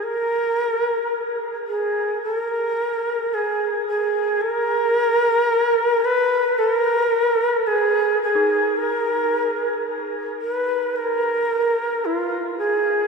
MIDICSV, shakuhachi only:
0, 0, Header, 1, 2, 480
1, 0, Start_track
1, 0, Tempo, 1090909
1, 17, Time_signature, 4, 2, 24, 8
1, 5752, End_track
2, 0, Start_track
2, 0, Title_t, "Shakuhachi"
2, 0, Program_c, 0, 77
2, 14, Note_on_c, 0, 70, 98
2, 617, Note_off_c, 0, 70, 0
2, 733, Note_on_c, 0, 68, 75
2, 958, Note_off_c, 0, 68, 0
2, 978, Note_on_c, 0, 69, 95
2, 1035, Note_off_c, 0, 69, 0
2, 1035, Note_on_c, 0, 70, 95
2, 1466, Note_on_c, 0, 68, 83
2, 1473, Note_off_c, 0, 70, 0
2, 1701, Note_off_c, 0, 68, 0
2, 1703, Note_on_c, 0, 68, 81
2, 1940, Note_on_c, 0, 70, 111
2, 1947, Note_off_c, 0, 68, 0
2, 2658, Note_on_c, 0, 71, 110
2, 2665, Note_off_c, 0, 70, 0
2, 2895, Note_on_c, 0, 69, 97
2, 2901, Note_off_c, 0, 71, 0
2, 2961, Note_off_c, 0, 69, 0
2, 2961, Note_on_c, 0, 70, 97
2, 3372, Note_on_c, 0, 68, 94
2, 3378, Note_off_c, 0, 70, 0
2, 3614, Note_off_c, 0, 68, 0
2, 3619, Note_on_c, 0, 68, 85
2, 3855, Note_on_c, 0, 70, 89
2, 3862, Note_off_c, 0, 68, 0
2, 4336, Note_off_c, 0, 70, 0
2, 4579, Note_on_c, 0, 70, 82
2, 4627, Note_off_c, 0, 70, 0
2, 4627, Note_on_c, 0, 71, 82
2, 4821, Note_on_c, 0, 70, 86
2, 4827, Note_off_c, 0, 71, 0
2, 5301, Note_on_c, 0, 65, 88
2, 5307, Note_off_c, 0, 70, 0
2, 5530, Note_off_c, 0, 65, 0
2, 5533, Note_on_c, 0, 68, 83
2, 5752, Note_off_c, 0, 68, 0
2, 5752, End_track
0, 0, End_of_file